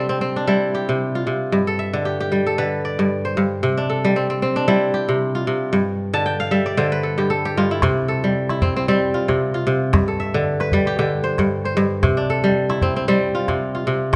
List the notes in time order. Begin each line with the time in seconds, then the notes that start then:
Already playing: C3 G3 D4 A4
0.09 C4
0.21 C4
0.36 D4
0.47 G3 E4
0.75 G4
0.89 C3
1.15 F4
1.27 C3
1.52 G2
1.67 A4
1.79 E5
1.93 D3
2.05 G4
2.20 G4
2.32 G3
2.46 A4
2.58 D3 B4
2.85 D5
2.99 G2
3.25 C5
3.37 G2
3.63 C3
3.77 D4
3.90 A4
4.05 G3
4.16 C4
4.30 C4
4.42 C4
4.56 D4
4.68 G3 E4
4.94 G4
5.09 C3
5.35 F4
5.47 C3
5.73 G2
6.14 D3 A5
6.26 G5
6.40 F5
6.51 G3 E5
6.66 D5
6.77 D3 C5
6.92 B4
7.03 A4
7.18 G2 G4
7.30 A4
7.45 G4
7.57 G2 F4
7.71 E4
7.82 C3, calabash thump, calabash click
8.08 A4
8.24 G3
8.49 E4, calabash click
8.62 C4, calabash thump, calabash click
8.76 C4, calabash click
8.88 G3 C4
9.14 F4
9.28 C3, calabash thump, calabash click
9.54 F4, calabash click
9.67 C3
9.93 G2, calabash thump, calabash click
10.08 A4
10.20 E5
10.34 D3
10.60 B4, calabash click
10.72 G3, calabash thump, calabash click
10.86 G4, calabash click
10.99 D3 G4
11.24 C5
11.38 G2, calabash thump, calabash click
11.65 C5, calabash click
11.77 G2
12.03 C3, calabash thump, calabash click
12.17 D4
12.30 A4
12.44 G3
12.70 E4, calabash click
12.82 C4, calabash thump, calabash click
12.96 C4, calabash click
13.08 G3 C4
13.35 F4
13.48 C3, calabash thump, calabash click
13.75 F4, calabash click
13.87 C3
14.13 G2